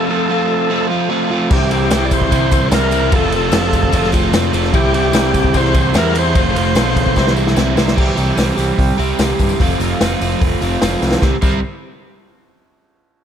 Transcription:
Already playing: F3
0.09 A3 C4 F4 A4
0.29 F3 A3 C4 F4
0.70 F3 A3 C4 F4
0.90 A3 C4 F4
1.09 F3 A3 C4 F4
1.30 A3 C4 F4
1.50 C2 C3 E3 G3 C4 E4 G4, kick, tambourine, crash
1.71 G3 C4 E4 G4, ride, tambourine
1.91 C2 E3 G3 C4 E4, snare, ride, tambourine
2.05 D5
2.11 C5, kick, ride, tambourine
2.22 kick
2.31 C2 C3 E3 G3 C4 E4, kick, ride, tambourine
2.51 G3 C4 E4, kick, ride, tambourine
2.71 C2 E3 G3 C4 E4 A#4, snare, ride, tambourine
2.91 G3 C4 E4, ride, tambourine
3.12 F1 F3 A3 C4 F4 A4, kick, ride, tambourine
3.32 F1 A3 C4 F4, ride, tambourine
3.36 A4
3.52 F1 F3 A3 C4 F4, snare, ride, tambourine
3.73 kick, ride, tambourine
3.83 kick
3.92 F1 F3 A3 C4 F4, kick, ride, tambourine
4.04 snare
4.12 A3 C4 F4, kick, ride, tambourine
4.33 F1 F3 A3 C4 F4, snare, ride, tambourine
4.53 F1 A3 C4 F4, ride, tambourine
4.64 snare
4.73 C2 C3 E3 G3 C4 E4 G4, kick, ride, tambourine
4.93 G3 C4 E4 G4, ride, tambourine
5.13 C2 E3 G3 C4 E4, snare, ride, tambourine
5.34 kick, ride, tambourine
5.44 kick
5.54 C2 C3 E3 G3 C4 E4 C5, kick, ride, tambourine
5.65 snare
5.74 G3 C4 E4, kick, ride, tambourine
5.93 E2 E3 G3 C4 E4, snare, ride, tambourine
5.98 A#4
6.14 G3 C4 E4, ride, tambourine
6.19 C5
6.34 F1 F3 A3 C4 F4, kick, ride, tambourine
6.54 F1 A3 C4 F4, ride, tambourine
6.58 C5
6.74 B1 F3 A3 C4 F4, snare, ride, tambourine
6.96 kick, ride
7.07 kick
7.16 C2 C3 E3 G3 C4 E4, kick, snare, tambourine
7.27 snare
7.35 G3 C4 E4, tambourine
7.47 snare
7.56 C2 E3 G3 C4 E4, snare, tambourine
7.76 C2 G3 C4 E4, snare, tambourine
7.88 snare
7.95 C2 C3 E3 G3 C4 G4, kick, crash
8.07 tambourine
8.16 C2 G3 C4 G4, open hi-hat, tambourine
8.36 C2 E3 G3 C4 G4, snare, open hi-hat, tambourine
8.56 C2 G3 C4 G4, open hi-hat, tambourine
8.79 C2, kick, open hi-hat
8.98 C2 G3 C4 G4, open hi-hat
9.19 C2 C3 E3 G3 C4 G4, snare, open hi-hat, tambourine
9.39 G2, kick, open hi-hat, tambourine
9.49 tambourine
9.60 F1 F3 A3 C4 F4, kick, open hi-hat
9.70 tambourine
9.80 F1 A3 C4 F4, open hi-hat, tambourine
10.01 F1 F3 A3 C4 F4, snare, open hi-hat, tambourine
10.21 F1 A3 C4 F4, open hi-hat, tambourine
10.32 tambourine
10.41 F1, kick, open hi-hat
10.61 F1 A3 C4 F4, open hi-hat
10.81 F1 F3 A3 C4 F4, snare, open hi-hat, tambourine
11.02 C2, snare, tambourine
11.11 snare, tambourine
11.21 C2 C3 G3 C4, kick, snare, tambourine
11.42 C2 C3 G3 C4, kick, crash, tambourine

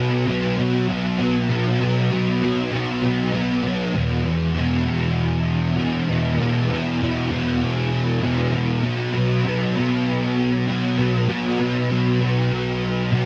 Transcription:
Already playing: B2 B3
0.00 F#3
0.26 B2 F#3 B3
0.57 F#3 B3
0.88 B2 F#3 B3
1.18 F#3 B3
1.49 B2 F#3 B3
1.80 F#3 B3
2.11 B2 F#3 B3
2.41 F#3 B3
2.71 B2 F#3 B3
3.02 F#3 B3
3.32 B2 F#3 B3
3.63 F#3 B3
3.94 E2 B2 E3
4.24 B2 E3
4.55 E2 B2 E3
4.86 B2 E3
5.77 E2 B2 E3
6.08 B2 E3
6.39 E2 B2 E3
6.69 B2 E3
7.00 E2 B2 E3
7.31 B2 E3
8.21 E2 B2 E3
8.53 B2 E3
8.83 B2 F#3 B3
9.14 F#3 B3
9.44 B2 F#3 B3
9.75 F#3 B3
10.67 B2 F#3 B3
10.98 F#3 B3
11.28 B2 F#3 B3
11.59 F#3 B3
11.89 B2 F#3 B3
12.20 F#3 B3
13.11 B2 F#3 B3

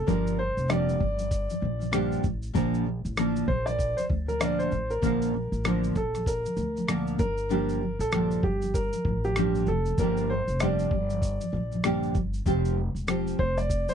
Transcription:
0.06 G1 G2 D3 F3 A#3 D4 G4 A#4, kick, shaker
0.27 shaker
0.37 G2 D3 C5
0.57 F1, shaker
0.68 G2 D3 F3 A#3 D4 G4 D5, cross-stick, shaker
0.89 shaker
0.98 G1 G2 D3 F3, kick
1.17 G2 D3 F3, shaker
1.31 kick, shaker
1.48 G2 D3 F3, shaker
1.60 A#1 G2 D3 F3
1.79 G2 D3 F3, shaker
1.91 G2 D3 F3 A#3 D4 G4, cross-stick, shaker
2.12 shaker
2.23 A1 G2 D3 F3, kick, shaker
2.42 shaker
2.53 A#1 A#2 D3 F3 A#3 D4 A#4, kick, shaker
2.74 shaker
2.85 A#2 D3 F3
3.05 A1, shaker
3.17 D3 F3 A#3 D4 A#4, cross-stick, shaker
3.36 shaker
3.47 A#1 A#2 D3 F3 C5, kick
3.65 A#2 D3 F3 D5, shaker
3.79 kick, shaker
3.96 A#2 D3 F3 C5, shaker
4.08 D2 A#2 D3 F3, kick
4.26 A#2 D3 F3 A#4, shaker
4.39 A#2 D3 F3 A#3 D4 A#4 D5, cross-stick, shaker
4.59 C5, shaker
4.70 A1 A#2 D3 F3, shaker
4.90 A#4, shaker
5.02 A#1 A#2 D3 F3 A#3 D4 A#4, kick, shaker
5.22 shaker
5.32 A#2 D3 F3
5.52 A1, shaker
5.64 D3 F3 A#3 D4 A#4, cross-stick, shaker
5.84 shaker
5.95 A#1 A#2 D3 F3 A4, kick, shaker
6.13 A#2 D3 F3, cross-stick, shaker
6.26 A#4, kick, shaker
6.44 A#2 D3 F3, shaker
6.56 D2 A#2 D3 F3, shaker
6.75 A#2 D3 F3, shaker
6.87 A#2 D3 F3 A#3 D4 A#4, cross-stick, shaker
7.07 shaker
7.18 G1 G2 D3 F3 A#4, kick, shaker
7.37 shaker
7.49 G2 D3 F3 A#3 D4 G4, shaker
7.69 shaker
7.80 G2 D3 F3
7.99 A#1 A4, shaker
8.12 G2 D3 F3 A#3 D4 G4, cross-stick, shaker
8.31 shaker
8.43 G1 G2 D3 F3 G4, kick
8.61 G2 D3 F3, shaker
8.74 A#4, kick, shaker
8.92 G2 D3 F3, shaker
9.05 A1 G2 D3 F3, kick
9.24 G2 D3 F3 G4, shaker
9.36 G2 D3 F3 A#3 D4 G4, cross-stick, shaker
9.55 shaker
9.66 F1 G2 D3 F3 A4, shaker
9.85 G2 D3 F3, shaker
9.98 G1 G2 D3 F3 A#3 D4 G4 A#4, kick, shaker
10.17 shaker
10.30 G2 D3 F3 C5
10.48 F1, shaker
10.60 G2 D3 F3 A#3 D4 G4 D5, cross-stick, shaker
10.79 shaker
10.91 G1 G2 D3 F3, kick
11.10 G2 D3 F3, shaker
11.22 kick, shaker
11.40 G2 D3 F3, shaker
11.52 A#1 G2 D3 F3
11.71 G2 D3 F3, shaker
11.84 G2 D3 F3 A#3 D4 G4, cross-stick, shaker
12.03 shaker
12.14 G1 G2 D3 F3, kick, shaker
12.33 shaker
12.46 F1 F3 C4 F4 G4, kick, shaker
12.65 shaker
12.76 F3 C4
12.95 E1, shaker
13.07 F3 C4 F4 G4, cross-stick, shaker
13.27 shaker
13.38 F1 F3 C5, kick
13.57 F3 C4 D5, shaker
13.70 kick, shaker
13.88 F3 C4 C5, shaker

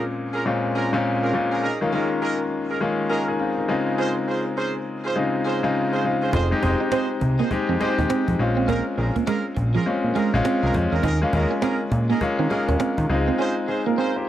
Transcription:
Already playing: A#2 G#3 C4 C#4 F4
0.34 C#4 F4 G#4 A#4
0.45 A#2 G#3 C4 C#4 F4
0.74 C#4 F4 G#4 A#4
0.93 A#2 G#3 C4 C#4 F4
1.22 C#4 F4 G#4 A#4
1.33 A#2 G#3 C4 C#4 F4
1.51 C#4 F4 G#4 A#4
1.63 C#4 D#4 G#4 A#4
1.81 D#3 G#3 A#3 C#4 F4
1.92 D#3 G#3 A#3 C#4 D#4 F4 G#4 A#4
2.22 C#4 D#4 G#4 A#4
2.69 C#4 D#4 G#4 A#4
2.80 D#3 G#3 A#3 C#4 F4
3.10 C#4 D#4 F4 G#4 A#4
3.28 D#4 G#4
3.39 C4 F4
3.58 A#3 D#4
3.68 C#3 G#3 C4 D#4 F4
3.98 C#4 F4 G#4 C5
4.27 C#4 F4 G#4 C5
4.57 C#4 F4 G#4 C5
5.04 C#4 F4 G#4 C5
5.15 C#3 G#3 C4 D#4 F4
5.45 C#4 F4 G#4 C5
5.63 C#3 G#3 C4 D#4 F4
5.92 C#4 F4 G#4 C5
6.04 C#3 G#3 C4 D#4 F4
6.22 C#4 F4 G#4 C5
6.33 F1 D#4 F4 G#4 C5, cajon bass
6.51 G#3 C4 D#4 G4
6.62 F1 G#3 C4 D#4 F4 G4 G#4 C5, muted clean electric guitar stroke, cajon bass
6.80 D#4, cajon slap
6.92 C4 D#4 F4 G#4 C5, cajon slap
7.21 C2, muted clean electric guitar stroke, cajon bass
7.39 A#3 D#4 F4 G#4 C5
7.51 F2 G#3 C4 D#4 G4, cajon bass
7.69 F2 C4
7.80 G#3 C4 D#4 F4 G4 G#4 C5, muted clean electric guitar stroke, cajon slap
7.98 D#2 D#4, cajon bass
8.10 C4, cajon slap
8.28 F2, muted clean electric guitar stroke, cajon bass
8.39 A#1 G#3 C4 C#4 F4
8.57 C4, cajon slap
8.68 A#3 C#4 F4 G#4 A#4, cajon bass
8.98 A#1 C#4 F4 G#4 A#4, muted clean electric guitar stroke, cajon slap
9.16 A#3, cajon bass
9.27 G#3 C#4 F4 G#4 A#4, cajon slap
9.57 A#1, muted clean electric guitar stroke, cajon bass
9.75 F3 C#4 F4 G#4 A#4
9.86 A#2 G#3 C4 C#4 F4
10.04 A#2
10.15 G#3 C#4 F4 G#4 A#4, cajon slap
10.34 A#1 G#3 C4 C#4 F4
10.45 C4, cajon slap
10.63 C2 C#4 F4 G#4 A#4
10.74 F2 G#3 C4 C#4 F4, muted clean electric guitar stroke, cajon bass
10.92 E2 C#4 F4 G#4 A#4, cajon slap
11.03 D#2 C#4 D#4 G#4 A#4, cajon bass
11.22 G#3 A#3 C#4 F4
11.33 D#2 G#3 A#3 C#4 D#4 F4 G#4 A#4, muted clean electric guitar stroke, cajon bass
11.51 C#4, cajon slap
11.62 C4 C#4 D#4 G#4 A#4, cajon slap
11.92 A#2, muted clean electric guitar stroke, cajon bass
12.10 A#3 C#4 D#4 G#4 A#4, cajon slap
12.21 D#3 G#3 A#3 C#4 F4, cajon bass
12.39 D#3 C4
12.50 G#3 A#3 C#4 D#4 F4 G#4 A#4, muted clean electric guitar stroke, cajon slap
12.69 D#2 C#4, cajon bass
12.80 C4, cajon slap
12.98 D#3, muted clean electric guitar stroke, cajon bass
13.09 C#2 G#3 C4 D#4 F4
13.28 C4, cajon slap
13.39 C#4 F4 G#4 C5
13.68 C#4 D#4 F4 G#4 C5, muted clean electric guitar stroke
13.86 A#3 F4 A#4
13.97 C4 C#4 F4 G#4 C5
14.16 G4 C5

